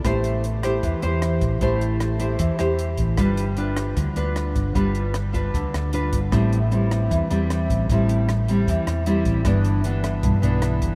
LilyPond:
<<
  \new Staff \with { instrumentName = "Nylon-string guitar" } { \time 4/4 \key a \minor \tempo 4 = 153 << { <e' g' c''>4 r8 <e' g' c''>4 <e' g' c''>4. | <e' g' c''>4. <e' g' c''>4 <e' g' c''>4. | <d' f' b'>8 r8 <d' f' b'>4 r8 <d' f' b'>4. | <d' f' b'>4 r8 <d' f' b'>4. <d' f' b'>8 r8 |
<g c' e'>8 r8 <g c' e'>4. <g c' e'>4. | <g c' e'>4 r8 <g c' e'>4. <g c' e'>4 | <e b d'>4 <e b d'>4. <e b d'>4. | } \\ { a2 e2 | a2 e2 | g2 d2 | g2 d2 |
a,2 e2 | a,2 e2 | g,2 g,2 | } >> }
  \new Staff \with { instrumentName = "Fingered electric bass" } { \clef bass \time 4/4 \key a \minor a,,2 e,16 r16 e,4 a,,8 | a,,2 e,16 r16 e,4 a,,8 | g,,2 d,16 r16 d,4 g,,8 | g,,2 d,16 r16 d,4 g,,8 |
a,,2 e,16 r16 e,4 a,,8 | a,,2 e,16 r16 e,4 a,,8 | g,,2 b,,16 r16 b,,4 g,,8 | }
  \new DrumStaff \with { instrumentName = "Drums" } \drummode { \time 4/4 <hh bd ss>8 hh8 hh8 <hh ss>8 <hh bd>8 hh8 <hh ss>8 <hh bd>8 | <hh bd>8 hh8 <hh ss>8 hh8 <hh bd>8 <hh ss>8 hh8 <hh bd>8 | <hh bd ss>8 hh8 hh8 <hh ss>8 <hh bd>8 hh8 <hh ss>8 <hh bd>8 | <hh bd>8 hh8 <hh ss>8 <hh bd>8 <hh bd>8 <hh ss>8 hh8 <hh bd>8 |
<hh bd ss>8 hh8 hh8 <hh ss>8 <hh bd>8 hh8 <hh ss>8 <hh bd>8 | <hh bd>8 hh8 <hh ss>8 hh8 <hh bd>8 <hh ss>8 hh8 <hh bd>8 | <hh bd ss>8 hh8 hh8 <hh ss>8 <hh bd>8 hh8 <hh ss>8 <hh bd>8 | }
>>